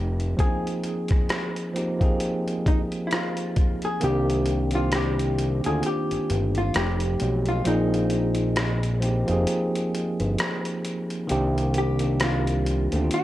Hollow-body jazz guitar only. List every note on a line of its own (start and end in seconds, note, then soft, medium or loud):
0.00 0.35 G4 medium
0.40 3.08 G#4 medium
2.68 2.78 D#4 medium
3.07 3.12 E4 medium
3.13 3.86 F4 medium
3.85 4.02 G#4 medium
4.04 4.71 G4 loud
4.75 4.92 F4 medium
4.95 5.61 G4 medium
5.66 5.85 G#4 medium
5.86 6.59 G4 loud
6.58 6.77 F4 medium
6.76 7.49 G4 medium
7.49 7.67 F4 medium
7.67 9.44 D#4 medium
11.78 12.23 G4 medium
12.24 13.16 F4 medium
13.14 13.24 G4 medium